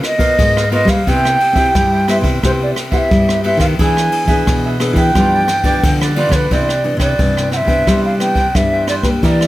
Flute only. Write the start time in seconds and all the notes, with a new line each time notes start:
0.05 D#5
0.74 D#5
0.90 F5
1.09 G5
2.10 E5
2.45 C5
2.63 D5
2.93 F#5
2.98 E5
3.45 E5
3.60 F5
3.80 G#5
4.96 G5
6.16 D5
6.32 B4 C#5
6.52 D5
7.00 D5
7.53 F#5
7.57 E5
8.05 F5
8.20 G5
8.56 E5
8.89 D5
9.04 B4
9.24 D5